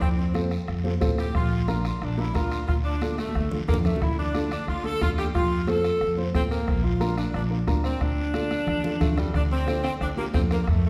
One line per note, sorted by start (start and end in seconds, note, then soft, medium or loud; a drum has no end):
0.01 0.55 F2 medium
0.01 0.08 C4 medium
0.01 bombo low medium
0.01 bombo rim medium
0.01 long guiro medium
0.17 0.48 C4 medium
0.34 0.52 C4 medium
0.34 0.52 F4 medium
0.34 0.52 A4 medium
0.34 bombo rim medium
0.34 high conga medium
0.34 short guiro medium
0.51 bombo rim medium
0.51 short guiro medium
0.68 0.95 F2 medium
0.68 bombo rim medium
0.68 long guiro medium
0.84 0.90 C4 medium
0.84 0.90 F4 medium
0.84 0.91 A4 medium
0.84 high conga medium
1.01 1.28 A2 medium
1.01 1.24 C4 medium
1.01 1.25 F4 medium
1.01 1.25 A4 medium
1.01 bombo low medium
1.01 bombo rim medium
1.01 high conga medium
1.01 short guiro medium
1.18 1.34 G4 medium
1.18 bombo rim medium
1.18 short guiro medium
1.35 1.88 A#1 medium
1.35 1.67 F4 medium
1.35 bombo low medium
1.35 bombo rim medium
1.35 long guiro medium
1.68 1.85 D4 medium
1.68 1.86 F4 medium
1.68 1.84 F4 medium
1.68 1.86 A#4 medium
1.68 bombo rim medium
1.68 high conga medium
1.68 short guiro medium
1.85 2.01 F4 medium
1.85 bombo rim medium
1.85 short guiro medium
2.01 2.28 A#1 medium
2.01 2.19 D4 medium
2.01 bombo rim medium
2.01 long guiro medium
2.17 2.24 D4 medium
2.17 2.35 E4 medium
2.17 2.24 F4 medium
2.17 2.24 A#4 medium
2.17 high conga medium
2.34 2.62 D2 medium
2.34 2.58 D4 medium
2.34 2.67 F4 medium
2.34 2.58 F4 medium
2.34 2.58 A#4 medium
2.34 bombo low medium
2.34 bombo rim medium
2.34 high conga medium
2.34 short guiro medium
2.52 bombo rim medium
2.52 short guiro medium
2.68 3.22 D2 medium
2.68 2.75 F4 medium
2.68 bombo low medium
2.68 bombo rim medium
2.68 long guiro medium
2.84 3.15 D4 medium
3.01 3.19 D4 medium
3.01 3.19 F4 medium
3.01 3.19 A4 medium
3.01 bombo rim medium
3.01 high conga medium
3.01 short guiro medium
3.18 3.49 A3 medium
3.18 bombo rim medium
3.18 high conga medium
3.18 short guiro medium
3.29 high conga medium
3.35 3.62 D2 medium
3.35 bombo rim medium
3.35 long guiro medium
3.51 3.57 D4 medium
3.51 3.57 F4 medium
3.51 3.58 A4 medium
3.51 low conga medium
3.68 3.95 F2 medium
3.68 3.76 A#3 medium
3.68 3.91 D4 medium
3.68 3.92 F4 medium
3.68 3.92 A4 medium
3.68 bombo low medium
3.68 bombo rim medium
3.68 short guiro medium
3.74 low conga loud
3.85 4.00 A3 medium
3.85 bombo rim medium
3.85 low conga medium
3.85 short guiro medium
3.96 low conga medium
4.01 4.55 D2 medium
4.01 4.18 E4 loud
4.01 bombo low medium
4.01 bombo rim medium
4.01 long guiro medium
4.19 4.49 D4 medium
4.35 4.52 D4 medium
4.35 4.52 F4 medium
4.35 4.53 A4 medium
4.35 bombo rim medium
4.35 high conga medium
4.35 short guiro medium
4.51 4.67 D4 medium
4.51 bombo rim medium
4.51 short guiro medium
4.67 4.94 D2 medium
4.67 4.84 F4 loud
4.67 bombo rim medium
4.67 long guiro medium
4.84 4.90 D4 medium
4.84 4.90 F4 medium
4.84 5.01 A4 loud
4.84 4.91 A4 medium
4.84 high conga medium
5.01 5.28 E2 medium
5.01 5.24 D4 medium
5.01 5.25 F4 medium
5.01 5.09 F4 loud
5.01 5.25 A4 medium
5.01 bombo low medium
5.01 bombo rim medium
5.01 high conga medium
5.01 short guiro medium
5.18 5.26 G4 medium
5.18 bombo rim medium
5.18 short guiro medium
5.34 5.88 F2 medium
5.34 5.66 F4 loud
5.34 bombo low medium
5.34 bombo rim medium
5.34 long guiro medium
5.67 5.85 C4 medium
5.67 5.85 F4 medium
5.67 5.86 A4 medium
5.67 6.18 A4 loud
5.67 bombo rim medium
5.67 high conga medium
5.67 short guiro medium
5.84 bombo rim medium
5.84 short guiro medium
6.01 6.28 F2 medium
6.01 bombo rim medium
6.01 long guiro medium
6.17 6.23 C4 medium
6.17 6.24 F4 medium
6.17 6.24 C5 medium
6.17 high conga medium
6.34 6.61 A2 medium
6.34 6.58 C4 medium
6.34 6.42 C4 medium
6.34 6.58 F4 medium
6.34 6.58 A4 medium
6.34 bombo low medium
6.34 bombo rim medium
6.34 high conga medium
6.34 short guiro medium
6.51 6.82 A#3 medium
6.51 bombo rim medium
6.51 short guiro medium
6.67 7.21 A#1 loud
6.67 bombo low medium
6.67 bombo rim medium
6.67 long guiro medium
6.84 7.18 F4 medium
7.00 7.18 D4 medium
7.00 7.18 F4 medium
7.00 7.18 A#4 medium
7.00 bombo rim medium
7.00 high conga medium
7.00 short guiro medium
7.18 7.33 D4 medium
7.18 bombo rim medium
7.18 short guiro medium
7.34 7.61 A#1 medium
7.34 7.43 D4 medium
7.34 bombo rim medium
7.34 long guiro medium
7.50 7.56 D4 medium
7.50 7.57 F4 medium
7.50 7.57 A#4 medium
7.67 7.94 D2 medium
7.67 7.91 D4 medium
7.67 7.91 F4 medium
7.67 7.91 A#4 medium
7.67 bombo low medium
7.67 bombo rim medium
7.67 high conga medium
7.67 short guiro medium
7.84 8.00 C4 medium
7.84 bombo rim medium
7.84 short guiro medium
8.01 8.54 D2 medium
8.01 9.18 D4 loud
8.01 bombo low medium
8.01 bombo rim medium
8.01 long guiro medium
8.34 8.51 D4 medium
8.34 8.52 F4 medium
8.34 8.52 A4 medium
8.34 bombo rim medium
8.34 high conga medium
8.34 short guiro medium
8.51 bombo rim medium
8.51 high conga medium
8.51 short guiro medium
8.67 8.94 D2 medium
8.67 bombo rim medium
8.67 low conga medium
8.67 long guiro medium
8.83 8.90 D4 medium
8.83 8.90 F4 medium
8.83 8.90 A4 medium
8.83 low conga medium
9.00 9.27 F2 medium
9.00 9.16 A3 medium
9.00 9.24 D4 medium
9.00 9.24 F4 medium
9.00 9.24 A4 medium
9.00 bombo low medium
9.00 bombo rim medium
9.00 low conga medium
9.00 short guiro medium
9.18 9.34 G3 medium
9.18 bombo rim medium
9.18 low conga medium
9.18 short guiro medium
9.34 9.88 D2 medium
9.34 9.42 D4 loud
9.34 bombo low medium
9.34 bombo rim medium
9.34 long guiro medium
9.51 9.82 C4 loud
9.66 9.84 D4 medium
9.66 9.84 F4 medium
9.66 9.85 A4 medium
9.66 bombo rim medium
9.66 high conga medium
9.66 short guiro medium
9.84 9.91 C4 medium
9.84 bombo rim medium
9.84 short guiro medium
10.01 10.27 D2 medium
10.01 10.08 D4 medium
10.01 bombo rim medium
10.01 long guiro medium
10.17 10.25 A#3 medium
10.17 10.23 D4 medium
10.17 10.23 F4 medium
10.17 10.23 G4 medium
10.17 high conga medium
10.33 10.61 F2 medium
10.33 10.42 C4 medium
10.33 10.57 D4 medium
10.33 10.57 F4 medium
10.33 10.57 A4 medium
10.33 bombo low medium
10.33 bombo rim medium
10.33 high conga medium
10.33 short guiro medium
10.51 10.57 A#3 medium
10.51 bombo rim medium
10.51 short guiro medium
10.63 10.67 A#3 medium
10.63 long guiro medium
10.67 10.90 F2 medium
10.67 10.84 A3 medium
10.67 bombo low medium
10.67 bombo rim medium
10.85 10.90 A3 medium